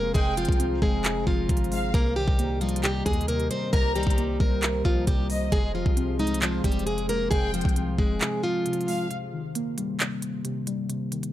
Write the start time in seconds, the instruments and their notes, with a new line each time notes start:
Already playing: 808-style bass F1, synth keys C3 F3 G#3 C4, steel-string acoustic guitar A#3 A#4, ambient pad G#4 C5 F5 C6
0.14 808-style bass F1, synth keys C3, steel-string acoustic guitar G#3 G#4, violin section G5, ambient pad A#5, kick, closed hi-hat
0.37 synth keys F3, steel-string acoustic guitar F3 F4, closed hi-hat
0.45 808-style bass C2, kick, closed hi-hat
0.52 closed hi-hat
0.60 synth keys C4, closed hi-hat
0.82 808-style bass F1, synth keys G#3, steel-string acoustic guitar G#3 G#4, kick
1.04 synth keys C3, clap, closed hi-hat
1.27 808-style bass F1, steel-string acoustic guitar F3 F4, kick
1.49 808-style bass G#1, synth keys C3, kick, closed hi-hat
1.57 closed hi-hat
1.64 closed hi-hat
1.71 synth keys G#3, violin section F5, open hi-hat
1.94 808-style bass C2, synth keys C3, steel-string acoustic guitar A#3 A#4, ambient pad G4 C5 D#5, kick, closed hi-hat
2.16 synth keys D#3, steel-string acoustic guitar G3 G4
2.28 808-style bass C2, kick
2.39 synth keys A#3, closed hi-hat
2.61 steel-string acoustic guitar F3 F4, synth keys G3, closed hi-hat
2.69 closed hi-hat
2.76 closed hi-hat
2.84 synth keys C3, steel-string acoustic guitar G3 G4, clap, closed hi-hat
3.06 808-style bass D#2, steel-string acoustic guitar G#3 G#4, kick, closed hi-hat
3.13 closed hi-hat
3.21 closed hi-hat
3.28 synth keys C3, steel-string acoustic guitar A#3 A#4, closed hi-hat
3.40 closed hi-hat
3.51 synth keys G3, steel-string acoustic guitar C4 C5, closed hi-hat
3.73 808-style bass C2, synth keys C3, steel-string acoustic guitar A#3 A#4, violin section A#5, kick, closed hi-hat
3.95 synth keys D#3, steel-string acoustic guitar G3 G4, closed hi-hat
4.03 808-style bass C2, kick, closed hi-hat
4.10 closed hi-hat
4.18 synth keys A#3, closed hi-hat
4.40 808-style bass C2, synth keys G3, steel-string acoustic guitar A#3 A#4, kick
4.63 synth keys C3, clap, closed hi-hat
4.85 808-style bass C2, steel-string acoustic guitar F3 F4, kick
5.07 808-style bass C2, synth keys C3, steel-string acoustic guitar G3 G4, kick, closed hi-hat
5.30 synth keys G3, violin section D#5, open hi-hat
5.52 808-style bass F1, synth keys C3, steel-string acoustic guitar G#3 G#4, ambient pad G#4 F5 C6, kick, closed hi-hat
5.74 synth keys F3, steel-string acoustic guitar F3 F4
5.86 808-style bass C2, kick
5.97 synth keys C4, closed hi-hat
6.19 synth keys G#3, steel-string acoustic guitar D#4 D#5, closed hi-hat
6.27 closed hi-hat
6.34 closed hi-hat
6.42 synth keys C3, steel-string acoustic guitar F3 F4, clap, closed hi-hat
6.64 808-style bass F1, steel-string acoustic guitar G3 G4, kick, closed hi-hat
6.72 closed hi-hat
6.79 closed hi-hat
6.86 synth keys C3, steel-string acoustic guitar G#3 G#4, closed hi-hat
6.98 closed hi-hat
7.09 synth keys G#3, steel-string acoustic guitar A#3 A#4, closed hi-hat
7.31 808-style bass F1, synth keys C3, steel-string acoustic guitar G#3 G#4, violin section G5, kick, closed hi-hat
7.53 synth keys F3, steel-string acoustic guitar F3 F4, closed hi-hat
7.61 808-style bass C2, kick, closed hi-hat
7.69 closed hi-hat
7.76 synth keys C4, closed hi-hat
7.98 808-style bass F1, synth keys G#3, steel-string acoustic guitar G#3 G#4, kick
8.21 synth keys C3, clap, closed hi-hat
8.43 steel-string acoustic guitar F3 F4
8.66 synth keys C3, closed hi-hat
8.73 closed hi-hat
8.81 closed hi-hat
8.88 synth keys G#3, violin section F5, open hi-hat
9.11 synth keys C3, closed hi-hat
9.33 synth keys D#3
9.55 synth keys A#3, closed hi-hat
9.78 synth keys G3, closed hi-hat
10.00 synth keys C3, clap, closed hi-hat
10.22 closed hi-hat
10.45 synth keys C3, closed hi-hat
10.67 synth keys G3, closed hi-hat
10.89 synth keys C3, closed hi-hat
11.12 synth keys D#3, closed hi-hat
11.23 closed hi-hat